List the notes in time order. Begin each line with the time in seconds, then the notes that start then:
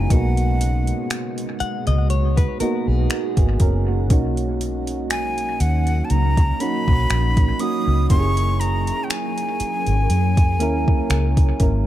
Already playing: B2 G#3 B3 D#4 E4 F#4 G#5
0.10 B1 A#3 B3 D#4 F#4 F#5, kick, closed hi-hat
0.37 closed hi-hat
0.61 closed hi-hat
0.87 closed hi-hat
1.10 finger snap, closed hi-hat
1.38 closed hi-hat
1.60 F#5, muted fingered electric bass stroke, closed hi-hat
1.87 C#2 D#5, closed hi-hat
2.10 C#5, closed hi-hat
2.37 B4, kick, closed hi-hat
2.60 A#3 B3 D#4 F#4 A#4, muted fingered electric bass stroke, closed hi-hat
2.87 B1 G#4
3.10 finger snap, closed hi-hat
3.37 G#1 B3 G#4, kick, closed hi-hat
3.60 F#1 C#4 A#4, kick, closed hi-hat
3.88 A#3 F#4
4.10 B1 F#3 A#3 C#4 D#4 F#4, kick, closed hi-hat
4.37 closed hi-hat
4.61 closed hi-hat
4.87 closed hi-hat
5.10 G#5, finger snap, closed hi-hat
5.38 closed hi-hat
5.60 D#2 F#5, closed hi-hat
5.87 closed hi-hat
6.05 A5
6.10 C#2 A#5, closed hi-hat
6.37 kick, closed hi-hat
6.60 A#3 C#4 D#4 F#4 B5, closed hi-hat
6.88 B1, kick
7.10 A#1, finger snap, closed hi-hat
7.37 kick, closed hi-hat
7.59 A#3 C#4 D#4 F#4 D#6, closed hi-hat
7.87 C#2
8.10 F#1 F#3 A#3 C#4 E4 G4 G#4 A#4 C#6, kick, closed hi-hat
8.19 G#4
8.37 closed hi-hat
8.60 A#5, closed hi-hat
8.87 closed hi-hat
9.04 G5
9.10 G#5, finger snap, closed hi-hat
9.38 closed hi-hat
9.60 muted fingered electric bass stroke, closed hi-hat
9.86 G#1, closed hi-hat
10.10 F#2 F#4, closed hi-hat
10.37 kick, closed hi-hat
10.60 D#2 A#3 C#4 E4 A#4, closed hi-hat
10.88 kick
11.10 C#2, finger snap, closed hi-hat
11.37 kick, closed hi-hat
11.60 G#1 A#3 C#4 E4 A#4, kick, closed hi-hat